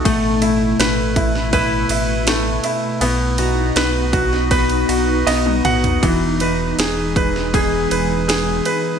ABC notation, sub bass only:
X:1
M:4/4
L:1/8
Q:1/4=80
K:E
V:1 name="Sub bass" clef=bass
A,,,2 A,,,3 A,,,2 z | B,,,2 B,,,3 B,,, B,,, B,,, | E,,,2 E,,,3 E,,,2 z |]